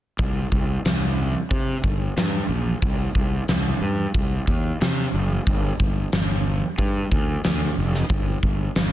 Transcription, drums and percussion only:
0, 0, Header, 1, 2, 480
1, 0, Start_track
1, 0, Tempo, 659341
1, 132, Time_signature, 4, 2, 24, 8
1, 6494, End_track
2, 0, Start_track
2, 0, Title_t, "Drums"
2, 133, Note_on_c, 9, 46, 48
2, 139, Note_on_c, 9, 36, 94
2, 206, Note_off_c, 9, 46, 0
2, 211, Note_off_c, 9, 36, 0
2, 378, Note_on_c, 9, 36, 73
2, 451, Note_off_c, 9, 36, 0
2, 620, Note_on_c, 9, 46, 45
2, 624, Note_on_c, 9, 38, 95
2, 693, Note_off_c, 9, 46, 0
2, 697, Note_off_c, 9, 38, 0
2, 1098, Note_on_c, 9, 36, 69
2, 1103, Note_on_c, 9, 46, 42
2, 1171, Note_off_c, 9, 36, 0
2, 1176, Note_off_c, 9, 46, 0
2, 1337, Note_on_c, 9, 36, 73
2, 1410, Note_off_c, 9, 36, 0
2, 1580, Note_on_c, 9, 46, 45
2, 1584, Note_on_c, 9, 38, 98
2, 1652, Note_off_c, 9, 46, 0
2, 1657, Note_off_c, 9, 38, 0
2, 2055, Note_on_c, 9, 36, 103
2, 2055, Note_on_c, 9, 46, 45
2, 2128, Note_off_c, 9, 36, 0
2, 2128, Note_off_c, 9, 46, 0
2, 2294, Note_on_c, 9, 36, 72
2, 2367, Note_off_c, 9, 36, 0
2, 2535, Note_on_c, 9, 46, 41
2, 2540, Note_on_c, 9, 38, 91
2, 2608, Note_off_c, 9, 46, 0
2, 2612, Note_off_c, 9, 38, 0
2, 3015, Note_on_c, 9, 46, 39
2, 3018, Note_on_c, 9, 36, 74
2, 3088, Note_off_c, 9, 46, 0
2, 3090, Note_off_c, 9, 36, 0
2, 3257, Note_on_c, 9, 36, 75
2, 3330, Note_off_c, 9, 36, 0
2, 3503, Note_on_c, 9, 46, 43
2, 3508, Note_on_c, 9, 38, 93
2, 3576, Note_off_c, 9, 46, 0
2, 3580, Note_off_c, 9, 38, 0
2, 3981, Note_on_c, 9, 36, 98
2, 3983, Note_on_c, 9, 46, 42
2, 4054, Note_off_c, 9, 36, 0
2, 4055, Note_off_c, 9, 46, 0
2, 4221, Note_on_c, 9, 36, 73
2, 4294, Note_off_c, 9, 36, 0
2, 4458, Note_on_c, 9, 46, 41
2, 4463, Note_on_c, 9, 38, 97
2, 4531, Note_off_c, 9, 46, 0
2, 4535, Note_off_c, 9, 38, 0
2, 4937, Note_on_c, 9, 46, 46
2, 4940, Note_on_c, 9, 36, 74
2, 5010, Note_off_c, 9, 46, 0
2, 5013, Note_off_c, 9, 36, 0
2, 5180, Note_on_c, 9, 36, 78
2, 5253, Note_off_c, 9, 36, 0
2, 5416, Note_on_c, 9, 46, 48
2, 5421, Note_on_c, 9, 38, 99
2, 5489, Note_off_c, 9, 46, 0
2, 5494, Note_off_c, 9, 38, 0
2, 5783, Note_on_c, 9, 38, 30
2, 5856, Note_off_c, 9, 38, 0
2, 5889, Note_on_c, 9, 46, 46
2, 5896, Note_on_c, 9, 36, 99
2, 5962, Note_off_c, 9, 46, 0
2, 5969, Note_off_c, 9, 36, 0
2, 6136, Note_on_c, 9, 36, 69
2, 6209, Note_off_c, 9, 36, 0
2, 6374, Note_on_c, 9, 46, 44
2, 6378, Note_on_c, 9, 38, 94
2, 6447, Note_off_c, 9, 46, 0
2, 6451, Note_off_c, 9, 38, 0
2, 6494, End_track
0, 0, End_of_file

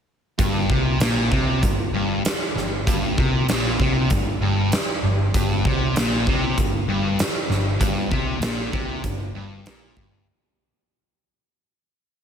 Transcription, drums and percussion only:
0, 0, Header, 1, 2, 480
1, 0, Start_track
1, 0, Key_signature, -2, "minor"
1, 0, Tempo, 617920
1, 301, Time_signature, 4, 2, 24, 8
1, 9507, End_track
2, 0, Start_track
2, 0, Title_t, "Drums"
2, 301, Note_on_c, 9, 36, 102
2, 306, Note_on_c, 9, 42, 65
2, 379, Note_off_c, 9, 36, 0
2, 383, Note_off_c, 9, 42, 0
2, 541, Note_on_c, 9, 36, 95
2, 619, Note_off_c, 9, 36, 0
2, 780, Note_on_c, 9, 42, 69
2, 788, Note_on_c, 9, 38, 106
2, 858, Note_off_c, 9, 42, 0
2, 865, Note_off_c, 9, 38, 0
2, 1023, Note_on_c, 9, 36, 95
2, 1100, Note_off_c, 9, 36, 0
2, 1265, Note_on_c, 9, 36, 90
2, 1266, Note_on_c, 9, 42, 69
2, 1343, Note_off_c, 9, 36, 0
2, 1344, Note_off_c, 9, 42, 0
2, 1748, Note_on_c, 9, 42, 69
2, 1756, Note_on_c, 9, 38, 113
2, 1826, Note_off_c, 9, 42, 0
2, 1833, Note_off_c, 9, 38, 0
2, 1998, Note_on_c, 9, 38, 33
2, 2076, Note_off_c, 9, 38, 0
2, 2230, Note_on_c, 9, 36, 106
2, 2235, Note_on_c, 9, 42, 73
2, 2308, Note_off_c, 9, 36, 0
2, 2313, Note_off_c, 9, 42, 0
2, 2471, Note_on_c, 9, 36, 99
2, 2548, Note_off_c, 9, 36, 0
2, 2708, Note_on_c, 9, 42, 65
2, 2716, Note_on_c, 9, 38, 100
2, 2786, Note_off_c, 9, 42, 0
2, 2793, Note_off_c, 9, 38, 0
2, 2949, Note_on_c, 9, 36, 99
2, 3027, Note_off_c, 9, 36, 0
2, 3187, Note_on_c, 9, 42, 64
2, 3190, Note_on_c, 9, 36, 85
2, 3264, Note_off_c, 9, 42, 0
2, 3268, Note_off_c, 9, 36, 0
2, 3667, Note_on_c, 9, 42, 65
2, 3675, Note_on_c, 9, 38, 109
2, 3745, Note_off_c, 9, 42, 0
2, 3753, Note_off_c, 9, 38, 0
2, 4151, Note_on_c, 9, 36, 104
2, 4154, Note_on_c, 9, 42, 69
2, 4229, Note_off_c, 9, 36, 0
2, 4232, Note_off_c, 9, 42, 0
2, 4390, Note_on_c, 9, 36, 105
2, 4467, Note_off_c, 9, 36, 0
2, 4630, Note_on_c, 9, 42, 68
2, 4638, Note_on_c, 9, 38, 102
2, 4708, Note_off_c, 9, 42, 0
2, 4716, Note_off_c, 9, 38, 0
2, 4870, Note_on_c, 9, 36, 91
2, 4948, Note_off_c, 9, 36, 0
2, 5109, Note_on_c, 9, 36, 87
2, 5109, Note_on_c, 9, 42, 63
2, 5187, Note_off_c, 9, 36, 0
2, 5187, Note_off_c, 9, 42, 0
2, 5587, Note_on_c, 9, 42, 69
2, 5594, Note_on_c, 9, 38, 106
2, 5664, Note_off_c, 9, 42, 0
2, 5672, Note_off_c, 9, 38, 0
2, 5835, Note_on_c, 9, 38, 32
2, 5912, Note_off_c, 9, 38, 0
2, 6064, Note_on_c, 9, 36, 104
2, 6066, Note_on_c, 9, 42, 75
2, 6142, Note_off_c, 9, 36, 0
2, 6143, Note_off_c, 9, 42, 0
2, 6304, Note_on_c, 9, 36, 100
2, 6381, Note_off_c, 9, 36, 0
2, 6540, Note_on_c, 9, 42, 65
2, 6547, Note_on_c, 9, 38, 102
2, 6617, Note_off_c, 9, 42, 0
2, 6625, Note_off_c, 9, 38, 0
2, 6784, Note_on_c, 9, 36, 101
2, 6862, Note_off_c, 9, 36, 0
2, 7022, Note_on_c, 9, 36, 89
2, 7022, Note_on_c, 9, 42, 60
2, 7099, Note_off_c, 9, 36, 0
2, 7099, Note_off_c, 9, 42, 0
2, 7503, Note_on_c, 9, 42, 66
2, 7511, Note_on_c, 9, 38, 113
2, 7581, Note_off_c, 9, 42, 0
2, 7588, Note_off_c, 9, 38, 0
2, 7743, Note_on_c, 9, 36, 104
2, 7820, Note_off_c, 9, 36, 0
2, 9507, End_track
0, 0, End_of_file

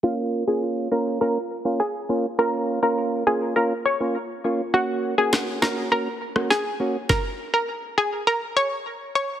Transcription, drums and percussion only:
0, 0, Header, 1, 2, 480
1, 0, Start_track
1, 0, Key_signature, -5, "minor"
1, 0, Tempo, 588235
1, 29, Time_signature, 4, 2, 24, 8
1, 7670, End_track
2, 0, Start_track
2, 0, Title_t, "Drums"
2, 4348, Note_on_c, 9, 38, 108
2, 4354, Note_on_c, 9, 37, 87
2, 4429, Note_off_c, 9, 38, 0
2, 4435, Note_off_c, 9, 37, 0
2, 4589, Note_on_c, 9, 38, 107
2, 4594, Note_on_c, 9, 37, 81
2, 4670, Note_off_c, 9, 38, 0
2, 4676, Note_off_c, 9, 37, 0
2, 5188, Note_on_c, 9, 37, 96
2, 5270, Note_off_c, 9, 37, 0
2, 5309, Note_on_c, 9, 38, 68
2, 5390, Note_off_c, 9, 38, 0
2, 5789, Note_on_c, 9, 36, 101
2, 5789, Note_on_c, 9, 38, 86
2, 5870, Note_off_c, 9, 38, 0
2, 5871, Note_off_c, 9, 36, 0
2, 7670, End_track
0, 0, End_of_file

